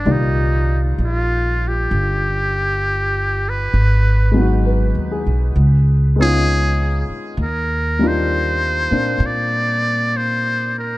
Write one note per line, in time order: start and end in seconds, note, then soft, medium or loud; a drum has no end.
0.00 0.13 D4 medium
0.05 0.94 C2 medium
0.05 3.72 A#2 soft
0.05 3.72 D#3 soft
0.05 3.73 G3 soft
0.05 3.73 F4 soft
0.05 3.73 D5 soft
0.12 0.84 D#4 medium
0.98 1.86 A#1 medium
1.05 1.70 F4 medium
1.68 3.51 G4 medium
1.91 3.69 G1 medium
3.49 4.66 B4 medium
3.74 4.91 G#1 medium
4.31 5.54 F#3 soft
4.31 5.53 G#3 soft
4.36 5.55 B3 soft
4.36 5.57 D#4 soft
4.41 5.58 F#4 medium
4.65 5.37 B4 soft
4.95 5.23 D#2 medium
5.12 5.75 G#4 soft
5.26 5.54 B1 medium
5.56 7.05 C#2 medium
6.16 7.37 G#3 soft
6.16 7.38 B3 soft
6.16 7.38 C#4 soft
6.20 7.39 D#4 soft
6.20 7.39 F4 medium
6.20 7.06 G#4 loud
7.10 muted upright bass stroke soft
7.37 8.87 D#2 medium
7.43 8.09 A#4 medium
7.99 10.98 G3 soft
7.99 8.89 A#3 soft
7.99 8.91 D4 soft
8.03 10.98 D#4 soft
8.03 10.98 F4 medium
8.07 9.28 C5 medium
8.91 9.18 A#2 medium
8.91 10.98 A#3 soft
8.91 10.98 C4 soft
8.91 10.98 D4 soft
9.20 10.98 A#2 medium
9.26 10.18 D5 medium
10.17 10.76 C5 medium
10.79 10.98 A#4 medium